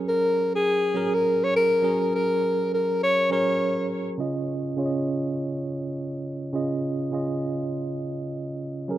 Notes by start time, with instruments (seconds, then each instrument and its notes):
Already playing: tine electric piano F#3 C#4 G#4 A#4
0.08 alto saxophone A#4
0.55 alto saxophone G#4
0.94 tine electric piano F#3 C#4 G#4 A#4
1.14 alto saxophone A#4
1.43 alto saxophone C#5
1.56 alto saxophone A#4
1.82 tine electric piano F#3 C#4 G#4 A#4
2.15 alto saxophone A#4
2.74 alto saxophone A#4
3.03 alto saxophone C#5
3.30 tine electric piano F#3 C#4 G#4 A#4, alto saxophone C#5
4.18 tine electric piano C#3 C#4 F4 D#5
4.77 tine electric piano C#3 C#4 F4 C#5
4.86 tine electric piano D#5
6.53 tine electric piano C#3 C#4 F4 D#5
7.12 tine electric piano C#3 C#4 F4 D#5
8.88 tine electric piano F#3 C#4 G#4 A#4